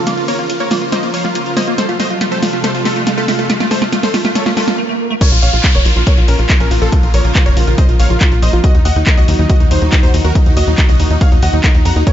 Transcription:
Already playing: C#3 F3 A#3 F4 A#4, riser
0.07 A#3 F4, snare, closed hi-hat
0.17 F4, closed hi-hat
0.28 A#3 A#4 C#5, open hi-hat
0.39 A#3 F4, closed hi-hat
0.49 F4, closed hi-hat
0.60 A#3 A#4 C#5, closed hi-hat
0.71 A#3 F4, snare, open hi-hat
0.82 F4, closed hi-hat
0.92 A#3 C5 D#5, snare, closed hi-hat
1.03 A#3 F4, closed hi-hat
1.14 C#5 F5, open hi-hat
1.24 A#3 F4, snare, closed hi-hat
1.35 A#3 F4, closed hi-hat
1.46 F4, closed hi-hat
1.57 A#3 C5 D#5, snare, open hi-hat
1.67 A#3 F4, closed hi-hat
1.78 C3 A3 A4 C5, snare, closed hi-hat
1.89 A3 F4, closed hi-hat
2.00 A3 C5 D#5, snare, open hi-hat
2.10 F4, closed hi-hat
2.21 A3 F4, snare, closed hi-hat
2.32 A3 A4 C5, closed hi-hat
2.42 F4, snare, open hi-hat
2.53 A3 F4, closed hi-hat
2.64 A3 A4 C5, snare, closed hi-hat
2.74 F4, closed hi-hat
2.85 A3 F4 A4, snare, open hi-hat
2.96 A3 F4, closed hi-hat
3.07 F4, snare, closed hi-hat
3.17 A3 F4 A4, closed hi-hat
3.28 A3 F4, snare, open hi-hat
3.39 A3 F4, closed hi-hat
3.50 A3 F4, snare, closed hi-hat
3.60 A3 F4, snare, closed hi-hat
3.71 A4 C5, snare, open hi-hat
3.82 A3 F4, snare, closed hi-hat
3.92 A3 F4, snare, closed hi-hat
4.03 A4 C5, snare, open hi-hat
4.14 A3 F4, snare, open hi-hat
4.25 A3 F4, snare, closed hi-hat
4.35 A4 C#5, snare, closed hi-hat, swell
4.46 A3 F4, snare, closed hi-hat
4.57 A3 F4 A4, snare, open hi-hat
4.68 F4, snare, closed hi-hat
4.78 A3
4.89 A3
5.10 A3
5.21 C#3 F3 A#3 F4 A#4 C#5, kick, closed hi-hat, crash, downlifter
5.32 A#1 F4, closed hi-hat
5.42 A#1 C#5 F5, open hi-hat
5.53 A#1 F4, closed hi-hat
5.64 F4, kick, clap, closed hi-hat
5.75 F1 A#4 C#5, closed hi-hat
5.85 A#1 F4, open hi-hat
5.96 A#1 F4, closed hi-hat
6.07 A#4 C#5, kick, closed hi-hat
6.17 A#1 F4, closed hi-hat
6.28 A#1 C#4 A#4, open hi-hat
6.39 A#1 F4, closed hi-hat
6.50 F4, kick, clap, closed hi-hat
6.60 A#1 C#4 A#4, closed hi-hat
6.71 A#1 F4, open hi-hat
6.82 A#1 F4 A4, closed hi-hat
6.92 F4, kick, closed hi-hat
7.03 A#1 F4, closed hi-hat
7.14 A#1 A#4 C#5, open hi-hat
7.24 A#1 F4, closed hi-hat
7.35 F4, kick, clap, closed hi-hat
7.46 F1 A#4 C#5, closed hi-hat
7.57 A#1 F4, open hi-hat
7.67 A#1 F4, closed hi-hat
7.78 C5 D#5, kick, closed hi-hat
7.89 A#1 F4, closed hi-hat
8.00 A#1 C#5 F5, open hi-hat
8.10 A#1 F4, closed hi-hat
8.21 F4, kick, clap, closed hi-hat
8.32 A#1 F4, closed hi-hat
8.42 A#1 C5 D#5, open hi-hat
8.53 A#1 F4, closed hi-hat
8.64 A#2 D#3 F#3 D#4 F#4 D#5, kick, closed hi-hat
8.75 D#2 D#4, closed hi-hat
8.85 D#2 D#5 F#5, open hi-hat
8.96 D#2 D#4, closed hi-hat
9.07 D#4, kick, clap, closed hi-hat
9.17 C#2 F#4 D#5, closed hi-hat
9.28 D#2 D#4, open hi-hat
9.39 D#2 D#4, closed hi-hat
9.49 F#4 D#5, kick, closed hi-hat
9.60 D#2 D#4, closed hi-hat
9.71 D#2 D#4 C5, open hi-hat
9.81 D#2 D#4, closed hi-hat
9.92 D#4, kick, clap, closed hi-hat
10.03 D#2 D#4 C5, closed hi-hat
10.13 D#2 D#4, open hi-hat
10.24 D#2 F#4 A#4, closed hi-hat
10.35 D#4, kick, closed hi-hat
10.46 D#2 D#4, closed hi-hat
10.56 D#2 F#4 D#5, open hi-hat
10.67 D#2 D#4, closed hi-hat
10.78 D#4, kick, clap, closed hi-hat
10.89 C#2 F#4 D#5, closed hi-hat
10.99 D#2 D#4, open hi-hat
11.10 D#2 D#4, closed hi-hat
11.21 C#5 F5, kick, closed hi-hat
11.32 D#2 D#4, closed hi-hat
11.42 D#2 D#5 F#5, open hi-hat
11.53 D#2 D#4, closed hi-hat
11.64 D#4, kick, clap, closed hi-hat
11.75 D#2 D#4, closed hi-hat
11.85 F2 F#5 A#5, open hi-hat
11.96 D#2 D#4, closed hi-hat
12.07 C#3 F3 C#4 F4 A#4 C#5, kick, closed hi-hat

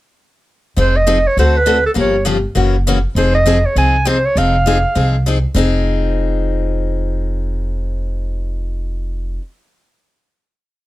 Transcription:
0.76 F1 F3 C4 D#4 G#4 C5
0.96 D#5
1.07 F3 C4 D#4 G#4
1.27 C#5
1.37 D2 D3 A3 C4 F#4 A4 C5
1.57 B4
1.66 D3 A3 C4 F#4 A4
1.86 A4
1.94 G1 C#3 F3 A#3 F4 G4
2.00 C#5
2.25 C#3 F3 A#3 F4 G4
2.55 F#1 C#3 E3 A#3 C#4 F#4
2.87 C#3 E3 A#3 C#4 F#4
3.15 F1 F3 C4 D#4 G#4 C5
3.35 D#5
3.46 F3 C4 D#4 G#4
3.66 C#5
3.76 C2 F3 C4 D#4 G#4 G#5
4.05 F3 C4 D#4 G#4 C5
4.25 C#5
4.36 F1 F3 C4 D#4 G#4 F5
4.66 F3 C4 D#4 G#4
4.95 C2 F3 C4 D#4 G#4
5.26 F3 C4 D#4 G#4
5.54 F1 F3 C4 D#4 G#4

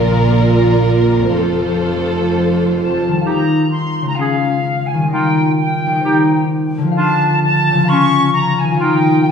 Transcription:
Already playing: A#1 A#2 D4 F4 A#4 D5 F5
1.16 F2
1.20 C4
1.24 A4
1.29 F4 A4 C5 F5
1.33 F1 F2
2.79 A5
3.08 D#3
3.12 G3
3.16 F4
3.21 D#4 F5
3.26 G4 A#5
3.71 C6
4.01 C#3
4.06 G#3 A#5
4.10 F4
4.14 F5
4.19 C#4 G#4 F5
4.87 G#5
4.94 D#3
4.99 G3
5.03 F4
5.08 D#5 G5
5.12 D#4 F4
5.57 G5
5.87 D#3
5.91 G3
5.95 D#4
6.00 C5
6.04 D#4 G4
6.78 D3
6.82 F3
6.87 F4
6.92 F5
6.96 D4 F4 A5
7.42 A5
7.70 C#3
7.75 F3
7.79 F4
7.84 F5
7.89 C#4 F4 C#6
8.34 A#5
8.60 G#5
8.64 D#3
8.68 A#3
8.72 F4
8.76 F4 F5
8.81 D#4 G5

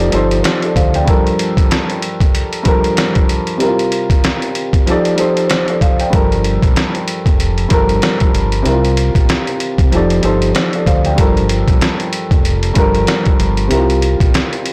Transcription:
Already playing: F3 D#4 G4 A4 D5
0.00 closed hi-hat
0.10 G1 F3 D#4 G4 A4, closed hi-hat
0.15 C5
0.31 closed hi-hat
0.42 G4 C5, snare, closed hi-hat
0.62 A4 D5, closed hi-hat
0.76 D2 C5 F5, kick, closed hi-hat
0.94 D5 G5, closed hi-hat
1.05 G2 F3 A4, kick, closed hi-hat
1.09 A#4
1.27 closed hi-hat
1.39 closed hi-hat
1.57 kick, closed hi-hat
1.71 snare, closed hi-hat
1.90 closed hi-hat
2.02 closed hi-hat
2.20 kick, closed hi-hat
2.35 closed hi-hat
2.53 closed hi-hat
2.63 G2 F3 A4, kick, closed hi-hat
2.68 A#4
2.84 closed hi-hat
2.97 snare, closed hi-hat
3.15 kick, closed hi-hat
3.29 closed hi-hat
3.47 closed hi-hat
3.57 C3 G3 E4, closed hi-hat
3.62 A#4
3.67 F4
3.79 closed hi-hat
3.92 closed hi-hat
4.10 kick, closed hi-hat
4.24 snare, closed hi-hat
4.42 closed hi-hat
4.55 closed hi-hat
4.73 kick, closed hi-hat
4.86 F3 D#4 G4 A4, closed hi-hat
4.91 D5
5.05 closed hi-hat
5.16 F3 D#4 G4 A4, closed hi-hat
5.20 C5
5.37 closed hi-hat
5.48 G4 C5, snare, closed hi-hat
5.68 A4 D5, closed hi-hat
5.81 C5 F5, kick, closed hi-hat
6.00 D5 G5, closed hi-hat
6.10 G1 G2 F3 A4, kick, closed hi-hat
6.14 A#4
6.32 closed hi-hat
6.44 closed hi-hat
6.63 A#1, kick, closed hi-hat
6.76 snare, closed hi-hat
6.95 closed hi-hat
7.08 closed hi-hat
7.26 F1, kick, closed hi-hat
7.40 closed hi-hat
7.58 closed hi-hat
7.68 G1 G2 F3 A4, kick, closed hi-hat
7.73 A#4
7.89 closed hi-hat
8.02 snare, closed hi-hat
8.20 kick, closed hi-hat
8.35 G1, closed hi-hat
8.52 closed hi-hat
8.62 C2 C3 G3 E4, closed hi-hat
8.67 A#4
8.72 F4
8.85 closed hi-hat
8.97 closed hi-hat
9.15 A#1, kick, closed hi-hat
9.29 snare, closed hi-hat
9.47 closed hi-hat
9.60 closed hi-hat
9.78 C2, kick, closed hi-hat
9.92 F1 F3 D#4 G4 A4, closed hi-hat
9.96 D5
10.10 closed hi-hat
10.21 G1 F3 D#4 G4 A4, closed hi-hat
10.25 C5
10.42 closed hi-hat
10.53 G4 C5, snare, closed hi-hat
10.73 A4 D5, closed hi-hat
10.86 D2 C5 F5, kick, closed hi-hat
11.05 D5 G5, closed hi-hat
11.15 G1 G2 F3 A4, kick, closed hi-hat
11.20 A#4
11.37 closed hi-hat
11.49 closed hi-hat
11.68 A#1, kick, closed hi-hat
11.81 snare, closed hi-hat
12.00 closed hi-hat
12.13 closed hi-hat
12.31 F1, kick, closed hi-hat
12.45 closed hi-hat
12.63 closed hi-hat
12.74 G1 G2 F3 A4, kick, closed hi-hat
12.78 A#4
12.95 closed hi-hat
13.07 snare, closed hi-hat
13.25 kick, closed hi-hat
13.40 G1, closed hi-hat
13.57 closed hi-hat
13.68 C2 C3 G3 E4, closed hi-hat
13.72 A#4
13.77 F4
13.90 closed hi-hat
14.02 closed hi-hat
14.20 A#1, kick, closed hi-hat
14.34 snare, closed hi-hat
14.53 closed hi-hat
14.66 closed hi-hat

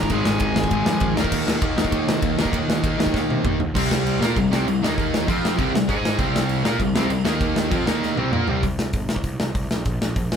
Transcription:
Already playing: D#3 G#3 A#4 A#5
0.03 kick
0.10 G#1 G#2 D#3 G#4 G#5, kick, ride
0.14 G#3
0.25 G#1, snare
0.40 G#1 G#4 G#5, kick, ride
0.56 G#1, snare
0.64 kick
0.71 G#1 G#2 D#3, kick, ride
0.75 G#3
0.86 F2, snare
1.00 F2, kick, ride
1.16 D#2 D#3 A#3, snare
1.21 D#4, kick
1.32 D#2, kick, crash
1.47 D#2, snare
1.62 D#2, kick, ride
1.77 D#2 A#3 D#4, snare
1.81 D#3, kick
1.92 D#2, kick, ride
2.08 C3, snare
2.22 D#2, kick, ride
2.38 D#2 D#3 A#3 D#4, snare
2.45 kick
2.53 D#2, kick, ride
2.68 D#2, snare
2.83 D#2, kick, ride
2.98 D#2 D#3 A#3 D#4, snare
3.06 kick
3.13 D#2, kick, snare
3.30 C3, high tom
3.45 D#2, kick, mid tom
3.60 D#2, floor tom
3.75 C2 C3 G3 C4, kick, crash
3.91 snare
4.07 crash
4.20 A#2 A#3 F4 A#4, snare
4.36 C2 C3 G3, kick, crash
4.50 C2 C3 G3 C4, snare
4.67 C2 C3 G3, crash
4.82 D#2 D#3 A#3 D#4, snare
4.98 kick, crash
5.14 snare
5.27 F2 F3 C4 F4, kick, crash
5.45 snare
5.57 C2 C3 G3 C4, kick, crash
5.73 C2 C3 G3, snare
5.87 G#2 G#3 D#4 G#4, kick, crash
6.05 snare
6.19 C2 C3 G3 C4, kick, crash
6.36 snare
6.49 crash
6.63 A#2 A#3 F4 A#4, snare
6.79 C2 C3 G3, kick, crash
6.94 C2 C3 G3 C4, snare
7.09 C2 C3 G3, crash
7.25 D#2 D#3 A#3 D#4, snare
7.41 kick, crash
7.56 snare
7.71 F2 F3 C4 F4, kick, crash
7.86 D#2 D#3 A#3 D#4, snare
8.03 snare
8.16 C2 C3 G3 C4, high tom
8.32 A#2 A#3 F4 A#4, mid tom
8.48 C2 C3 G3 C4, floor tom
8.63 C2, kick, open hi-hat
8.79 C2, snare
8.93 G1, kick, open hi-hat
9.09 C2, snare
9.16 kick
9.24 C2, kick, open hi-hat
9.40 C2, snare
9.54 C2, kick, open hi-hat
9.71 A#1, snare
9.85 A#1, kick, open hi-hat
10.01 A#1, snare
10.16 A#1, kick, open hi-hat
10.32 A#1, snare

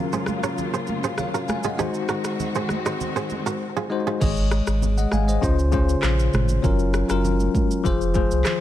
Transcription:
Already playing: C#3 F#3 A#3 C#4 F4 A#4
0.13 G#4 C5, high conga, shaker
0.26 cross-stick, high conga, shaker
0.43 A#4 C#5, cross-stick, shaker
0.58 low conga, shaker
0.74 G#4 C5, shaker
0.87 high conga, shaker
1.04 G#4 C5, shaker
1.18 C#5 F5, cross-stick, low conga, shaker
1.34 F#4 A#4, shaker
1.48 F5 G#5, cross-stick, high conga, shaker
1.63 F4 G#4 D#5 F#5, high conga, shaker
1.77 D#3 G#3 C4 D#4 F#4 G#4 C5, low conga, shaker
1.94 shaker
2.09 F#4 A#4, cross-stick, shaker
2.24 cross-stick, shaker
2.40 low conga, shaker
2.55 G#4 C5, high conga, shaker
2.69 cross-stick, high conga, shaker
2.86 C5 D#5, cross-stick, shaker
3.01 low conga, shaker
3.16 G#4 C5, shaker
3.30 high conga, shaker
3.46 F#4 A#4, shaker
3.77 F4 G#4
3.90 G#3 D#4 F#4 C5
4.07 F4 G#4
4.20 G#1 G#3 G#4 C#5 D#5, kick, crash, low conga, shaker
4.37 shaker
4.51 cross-stick, shaker
4.67 G#1, cross-stick, shaker
4.82 low conga, shaker
4.98 D#5 F#5, high conga, shaker
5.12 G#1 F5 G#5, cross-stick, high conga, shaker
5.28 C5 D#5, shaker
5.41 C#2 C#3 C#4 F4 C5, kick, shaker
5.59 shaker
5.72 C#3 C#4 F4 C5, kick, high conga, shaker
5.89 shaker
6.03 A#1, cross-stick, clap, low conga, shaker
6.19 shaker
6.33 G#1, cross-stick, mid tom, high conga, shaker
6.49 high conga, shaker
6.62 F#1 F#3 C#4 F4 A#4, kick, low conga, shaker
6.79 shaker
6.94 cross-stick, shaker
7.08 F#1 F#3 C#4 F4 A#4, cross-stick, shaker
7.25 low conga, shaker
7.40 high conga, shaker
7.55 kick, high conga, shaker
7.71 shaker
7.84 F1 F3 F4 G#4 C5, kick, shaker
8.01 shaker
8.14 F3 F4 G#4 C5, kick, high conga, shaker
8.31 C2, shaker
8.45 cross-stick, clap, low conga, shaker

